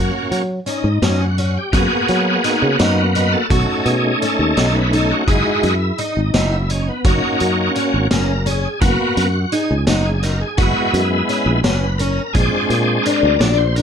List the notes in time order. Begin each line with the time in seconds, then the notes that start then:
Already playing: A#3 C#4 F#4
0.31 F#3, closed hi-hat
0.66 C#4 D#4, closed hi-hat
0.84 G#2
1.02 F#2 C#4, snare, closed hi-hat
1.22 F#4
1.38 C#4, closed hi-hat
1.57 G4
1.72 F#2 A#3 B3 F#4 G#4, kick, closed hi-hat
2.08 F#3, closed hi-hat
2.44 D#4, snare, closed hi-hat
2.62 C#3
2.79 F#2 D#4, snare, closed hi-hat
3.15 D#4 B4, closed hi-hat
3.32 A4
3.50 B1 A3 C#4 D#4 F#4, kick, closed hi-hat
3.86 B2 G#4, closed hi-hat
4.21 C#4 A4, closed hi-hat
4.39 D#2
4.57 B1 D#4, snare, closed hi-hat
4.76 B4
4.93 D#4 A4, closed hi-hat
5.11 F#4
5.27 F#1 G#3 D#4 E4 F#4 G#4, kick, closed hi-hat
5.63 F#2, closed hi-hat
5.98 D#4, closed hi-hat
6.17 G#1
6.34 F#1 D#4 E4, snare, closed hi-hat
6.70 C#4 D#4, closed hi-hat
6.88 B3
7.05 F#1 A#3 C#4 D#4 F#4, kick, closed hi-hat
7.40 F#2, closed hi-hat
7.75 C#4, closed hi-hat
7.94 G#1
8.11 F#1 C#4 A#4, snare, closed hi-hat
8.46 C#4 G#4, closed hi-hat
8.80 F#1 A#3 B3 F#4, kick, closed hi-hat
9.17 F#2, closed hi-hat
9.52 D#4 G#4, closed hi-hat
9.71 C#2
9.87 F#1 D#4 F#4, snare, closed hi-hat
10.06 G#4
10.23 D#4 A#4, snare, closed hi-hat
10.41 G#4
10.57 F#1 G#3 B3 E4 F#4, kick, closed hi-hat
10.94 F#2, closed hi-hat
11.29 C#4, closed hi-hat
11.46 A#1
11.63 F#1 C#4 B4, snare, closed hi-hat
11.98 C#4 A#4, closed hi-hat
12.33 A#1 G#3 C4 D4 F4 G#4, kick, closed hi-hat
12.70 A#2, closed hi-hat
13.03 D4 A#4, closed hi-hat
13.23 D2
13.39 A#1 D4 D5, snare, closed hi-hat
13.57 C5
13.75 D4 A#4, closed hi-hat